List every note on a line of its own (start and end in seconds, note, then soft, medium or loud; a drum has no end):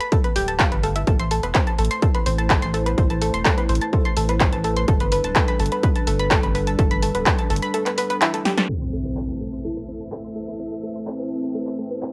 0.00 0.11 B5 loud
0.00 closed hi-hat soft
0.12 0.20 A4 medium
0.12 kick loud
0.12 closed hi-hat medium
0.24 0.29 B4 medium
0.24 closed hi-hat soft
0.36 0.69 D1 medium
0.36 0.48 G4 loud
0.36 open hi-hat loud
0.48 0.53 A5 medium
0.48 closed hi-hat soft
0.60 0.64 F5 medium
0.60 kick loud
0.60 clap loud
0.60 closed hi-hat medium
0.72 1.04 G1 loud
0.72 0.79 B4 medium
0.72 closed hi-hat soft
0.83 0.95 A4 medium
0.83 open hi-hat medium
0.96 1.03 E5 medium
0.96 closed hi-hat soft
1.07 1.40 A1 medium
1.07 4.84 A3 medium
1.07 4.84 E4 medium
1.07 1.12 A4 medium
1.07 8.65 B4 medium
1.07 4.84 C5 loud
1.07 kick loud
1.07 closed hi-hat medium
1.19 1.31 C6 loud
1.19 closed hi-hat soft
1.31 1.39 A4 medium
1.31 open hi-hat loud
1.43 1.53 E1 medium
1.43 1.48 B4 medium
1.43 closed hi-hat soft
1.55 1.63 C5 medium
1.55 kick loud
1.55 clap loud
1.55 closed hi-hat medium
1.67 1.78 A5 medium
1.67 closed hi-hat soft
1.79 1.89 A1 loud
1.79 1.83 A4 medium
1.79 open hi-hat medium
1.85 closed hi-hat medium
1.91 2.02 C6 loud
1.91 closed hi-hat soft
2.02 2.10 A4 medium
2.02 kick loud
2.02 closed hi-hat medium
2.15 2.19 B4 medium
2.15 closed hi-hat soft
2.26 2.59 A1 loud
2.26 2.34 C5 medium
2.26 open hi-hat loud
2.38 2.50 A5 medium
2.38 closed hi-hat soft
2.50 2.55 A4 medium
2.50 kick loud
2.50 clap loud
2.50 closed hi-hat medium
2.62 2.95 A1 medium
2.62 2.73 C6 loud
2.62 closed hi-hat soft
2.74 2.82 A4 medium
2.74 open hi-hat medium
2.86 2.91 B4 medium
2.86 closed hi-hat soft
2.98 3.31 A1 loud
2.98 3.06 C5 medium
2.98 kick loud
2.98 closed hi-hat medium
3.10 3.21 A5 medium
3.10 closed hi-hat soft
3.21 3.26 A4 medium
3.21 open hi-hat loud
3.34 3.43 E1 medium
3.34 3.45 C6 loud
3.34 closed hi-hat soft
3.45 3.53 A4 medium
3.45 kick loud
3.45 clap loud
3.45 closed hi-hat medium
3.58 3.62 B4 medium
3.58 closed hi-hat soft
3.69 3.79 A1 loud
3.69 3.77 C5 medium
3.69 open hi-hat medium
3.75 closed hi-hat medium
3.81 3.92 A5 medium
3.81 closed hi-hat soft
3.93 3.98 A4 medium
3.93 kick loud
3.93 closed hi-hat medium
4.05 4.16 C6 loud
4.05 closed hi-hat soft
4.17 4.50 A1 loud
4.17 4.25 A4 medium
4.17 open hi-hat loud
4.29 4.34 B4 medium
4.29 closed hi-hat soft
4.40 4.49 C5 medium
4.40 kick loud
4.40 clap loud
4.40 closed hi-hat medium
4.53 4.85 A1 medium
4.53 4.64 A5 medium
4.53 closed hi-hat soft
4.64 4.69 A4 medium
4.64 open hi-hat medium
4.77 4.88 C6 loud
4.77 closed hi-hat soft
4.88 5.21 G1 loud
4.88 8.65 G3 medium
4.88 8.65 D4 medium
4.88 4.96 A4 medium
4.88 8.65 A4 medium
4.88 kick loud
4.88 closed hi-hat medium
5.00 5.05 B4 medium
5.00 closed hi-hat soft
5.12 5.20 B4 medium
5.12 open hi-hat loud
5.24 5.34 D1 medium
5.24 5.35 A5 medium
5.24 closed hi-hat soft
5.36 5.41 A4 medium
5.36 kick loud
5.36 clap loud
5.36 closed hi-hat medium
5.48 5.59 B5 loud
5.48 closed hi-hat soft
5.60 5.70 G1 loud
5.60 5.68 A4 medium
5.60 open hi-hat medium
5.66 closed hi-hat medium
5.72 5.76 B4 medium
5.72 closed hi-hat soft
5.83 5.91 B4 medium
5.83 kick loud
5.83 closed hi-hat medium
5.96 6.07 A5 medium
5.96 closed hi-hat soft
6.07 6.40 G1 loud
6.07 6.12 A4 medium
6.07 open hi-hat loud
6.20 6.31 B5 loud
6.20 closed hi-hat soft
6.31 6.39 A4 medium
6.31 kick loud
6.31 clap loud
6.31 closed hi-hat medium
6.43 6.76 G1 medium
6.43 6.48 B4 medium
6.43 closed hi-hat soft
6.55 6.63 B4 medium
6.55 open hi-hat medium
6.67 6.78 A5 medium
6.67 closed hi-hat soft
6.79 7.11 G1 loud
6.79 6.83 A4 medium
6.79 kick loud
6.79 closed hi-hat medium
6.91 7.02 B5 loud
6.91 closed hi-hat soft
7.02 7.10 A4 medium
7.02 open hi-hat loud
7.15 7.24 D1 medium
7.15 7.19 B4 medium
7.15 closed hi-hat soft
7.26 7.34 B4 medium
7.26 kick loud
7.26 clap loud
7.26 closed hi-hat medium
7.38 7.50 A5 medium
7.38 closed hi-hat soft
7.50 7.60 G1 loud
7.50 7.55 A4 medium
7.50 open hi-hat medium
7.56 closed hi-hat medium
7.62 7.73 B5 loud
7.62 closed hi-hat soft
7.74 7.82 A4 medium
7.74 closed hi-hat medium
7.86 7.91 B4 medium
7.86 clap soft
7.86 closed hi-hat soft
7.98 8.03 B4 loud
7.98 open hi-hat loud
8.10 8.17 B4 loud
8.10 closed hi-hat soft
8.22 8.29 E4 loud
8.22 clap loud
8.22 closed hi-hat medium
8.34 8.38 A4 medium
8.34 closed hi-hat soft
8.45 8.57 G4 medium
8.45 snare medium
8.45 open hi-hat medium
8.58 8.65 A5 medium
8.58 snare medium
8.58 closed hi-hat soft
8.69 12.12 A3 medium
8.69 9.55 C4 loud
8.69 12.12 E4 medium
8.69 12.12 A4 medium
8.69 8.74 A4 medium
8.69 12.12 B4 medium
8.69 12.12 C5 medium
8.69 impact medium
8.82 8.92 C6 loud
8.92 9.01 A4 medium
8.92 12.12 E5 medium
9.05 9.10 B4 medium
9.17 9.25 C5 medium
9.17 clap loud
9.29 9.40 A5 medium
9.41 9.45 A4 medium
9.41 closed hi-hat soft
9.53 9.64 C6 medium
9.53 closed hi-hat soft
9.64 10.27 E4 medium
9.64 9.72 A4 medium
9.64 closed hi-hat medium
9.77 9.81 B4 medium
9.77 closed hi-hat soft
9.88 9.96 C5 medium
9.88 closed hi-hat soft
10.00 10.12 A5 medium
10.00 closed hi-hat soft
10.12 10.17 A4 medium
10.12 clap loud
10.24 10.35 C6 loud
10.24 closed hi-hat soft
10.36 10.44 A4 medium
10.48 10.53 B4 medium
10.48 closed hi-hat soft
10.60 10.68 C5 medium
10.60 closed hi-hat medium
10.72 10.83 A5 medium
10.72 closed hi-hat soft
10.83 10.88 A4 medium
10.96 11.07 C6 loud
10.96 closed hi-hat soft
11.07 12.12 C4 loud
11.07 11.15 A4 medium
11.07 clap loud
11.20 11.24 B4 medium
11.20 closed hi-hat soft
11.31 11.39 C5 medium
11.31 closed hi-hat soft
11.43 11.54 A5 medium
11.43 closed hi-hat soft
11.55 11.60 A4 medium
11.55 closed hi-hat medium
11.67 11.78 C6 loud
11.67 clap soft
11.67 closed hi-hat soft
11.79 11.87 A4 medium
11.79 closed hi-hat soft
11.91 11.95 B4 medium
11.91 closed hi-hat soft
12.02 12.10 C5 medium
12.02 clap loud
12.02 closed hi-hat medium